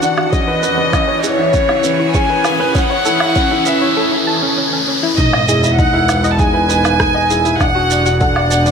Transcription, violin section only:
0, 0, Header, 1, 2, 480
1, 0, Start_track
1, 0, Key_signature, 4, "major"
1, 0, Tempo, 606061
1, 261, Time_signature, 4, 2, 24, 8
1, 6900, End_track
2, 0, Start_track
2, 0, Title_t, "Violin section"
2, 0, Program_c, 0, 48
2, 0, Note_on_c, 0, 78, 94
2, 251, Note_on_c, 0, 75, 99
2, 256, Note_off_c, 0, 78, 0
2, 944, Note_off_c, 0, 75, 0
2, 968, Note_on_c, 0, 73, 102
2, 1690, Note_on_c, 0, 80, 94
2, 1695, Note_off_c, 0, 73, 0
2, 2172, Note_on_c, 0, 78, 108
2, 2176, Note_off_c, 0, 80, 0
2, 2896, Note_on_c, 0, 76, 100
2, 2897, Note_off_c, 0, 78, 0
2, 3138, Note_off_c, 0, 76, 0
2, 4098, Note_on_c, 0, 75, 97
2, 4548, Note_off_c, 0, 75, 0
2, 4579, Note_on_c, 0, 78, 97
2, 5003, Note_on_c, 0, 81, 81
2, 5004, Note_off_c, 0, 78, 0
2, 5060, Note_off_c, 0, 81, 0
2, 5060, Note_on_c, 0, 80, 107
2, 6018, Note_on_c, 0, 78, 110
2, 6020, Note_off_c, 0, 80, 0
2, 6493, Note_off_c, 0, 78, 0
2, 6502, Note_on_c, 0, 78, 93
2, 6900, Note_off_c, 0, 78, 0
2, 6900, End_track
0, 0, End_of_file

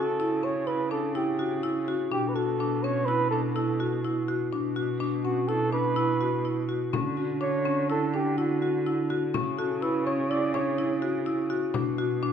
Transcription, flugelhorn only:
0, 0, Header, 1, 2, 480
1, 0, Start_track
1, 0, Tempo, 481155
1, 2113, Time_signature, 5, 2, 24, 8
1, 12297, End_track
2, 0, Start_track
2, 0, Title_t, "Flugelhorn"
2, 0, Program_c, 0, 56
2, 0, Note_on_c, 0, 69, 84
2, 439, Note_on_c, 0, 73, 77
2, 454, Note_off_c, 0, 69, 0
2, 669, Note_on_c, 0, 71, 85
2, 684, Note_off_c, 0, 73, 0
2, 903, Note_off_c, 0, 71, 0
2, 909, Note_on_c, 0, 69, 70
2, 1134, Note_off_c, 0, 69, 0
2, 1153, Note_on_c, 0, 67, 59
2, 1599, Note_off_c, 0, 67, 0
2, 2117, Note_on_c, 0, 67, 71
2, 2279, Note_on_c, 0, 71, 63
2, 2294, Note_off_c, 0, 67, 0
2, 2348, Note_on_c, 0, 69, 71
2, 2363, Note_off_c, 0, 71, 0
2, 2822, Note_on_c, 0, 73, 81
2, 2837, Note_off_c, 0, 69, 0
2, 3046, Note_on_c, 0, 71, 91
2, 3061, Note_off_c, 0, 73, 0
2, 3293, Note_off_c, 0, 71, 0
2, 3299, Note_on_c, 0, 69, 65
2, 3410, Note_off_c, 0, 69, 0
2, 3533, Note_on_c, 0, 69, 62
2, 3989, Note_off_c, 0, 69, 0
2, 5228, Note_on_c, 0, 66, 72
2, 5468, Note_on_c, 0, 69, 86
2, 5483, Note_off_c, 0, 66, 0
2, 5709, Note_off_c, 0, 69, 0
2, 5715, Note_on_c, 0, 71, 83
2, 6636, Note_off_c, 0, 71, 0
2, 7397, Note_on_c, 0, 73, 77
2, 7844, Note_off_c, 0, 73, 0
2, 7887, Note_on_c, 0, 69, 71
2, 8131, Note_on_c, 0, 67, 69
2, 8146, Note_off_c, 0, 69, 0
2, 8353, Note_off_c, 0, 67, 0
2, 8359, Note_on_c, 0, 66, 56
2, 9039, Note_off_c, 0, 66, 0
2, 9558, Note_on_c, 0, 69, 60
2, 9792, Note_on_c, 0, 71, 70
2, 9807, Note_off_c, 0, 69, 0
2, 10035, Note_off_c, 0, 71, 0
2, 10040, Note_on_c, 0, 73, 78
2, 10274, Note_on_c, 0, 74, 89
2, 10289, Note_off_c, 0, 73, 0
2, 10513, Note_off_c, 0, 74, 0
2, 10519, Note_on_c, 0, 73, 75
2, 10965, Note_off_c, 0, 73, 0
2, 12297, End_track
0, 0, End_of_file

